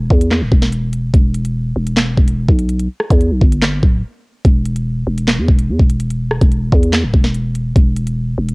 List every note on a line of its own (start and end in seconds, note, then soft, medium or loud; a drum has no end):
0.10 0.43 E2 loud
0.10 kick medium
0.21 closed hi-hat medium
0.31 snare loud
0.31 clap medium
0.41 0.51 D1 loud
0.52 1.11 E1 loud
0.52 kick medium
0.62 snare medium
0.73 closed hi-hat medium
0.93 closed hi-hat medium
1.14 1.73 E1 loud
1.14 kick loud
1.14 closed hi-hat medium
1.34 closed hi-hat medium
1.45 closed hi-hat medium
1.76 2.16 E1 loud
1.87 closed hi-hat medium
1.97 snare loud
1.97 clap medium
2.17 2.47 E1 loud
2.17 kick medium
2.28 closed hi-hat medium
2.48 2.88 B1 loud
2.48 kick loud
2.59 closed hi-hat medium
2.69 closed hi-hat medium
2.79 closed hi-hat medium
3.00 cross-stick medium
3.10 3.33 E2 loud
3.10 kick loud
3.10 closed hi-hat medium
3.21 closed hi-hat medium
3.31 3.41 B1 loud
3.41 3.81 G1 loud
3.41 kick medium
3.52 closed hi-hat medium
3.62 snare loud
3.62 clap medium
3.83 4.03 D1 loud
3.83 kick loud
4.45 5.04 E1 loud
4.45 kick loud
4.45 closed hi-hat medium
4.66 closed hi-hat medium
4.76 closed hi-hat medium
5.07 5.40 E1 loud
5.18 closed hi-hat medium
5.28 snare loud
5.28 clap medium
5.38 5.48 E2 loud
5.48 5.71 E1 loud
5.48 kick medium
5.59 closed hi-hat medium
5.69 5.79 E2 loud
5.79 6.39 E1 loud
5.79 kick medium
5.90 closed hi-hat medium
6.00 closed hi-hat medium
6.11 closed hi-hat medium
6.31 cross-stick medium
6.41 6.71 E1 loud
6.41 kick loud
6.41 closed hi-hat medium
6.52 closed hi-hat medium
6.72 7.05 E2 loud
6.72 kick medium
6.83 closed hi-hat medium
6.93 snare loud
6.93 clap medium
7.04 7.13 D1 loud
7.14 7.73 E1 loud
7.14 kick medium
7.24 snare medium
7.35 closed hi-hat medium
7.55 closed hi-hat medium
7.76 8.36 E1 loud
7.76 kick loud
7.76 closed hi-hat medium
7.97 closed hi-hat medium
8.07 closed hi-hat medium
8.38 8.55 E1 loud
8.49 closed hi-hat medium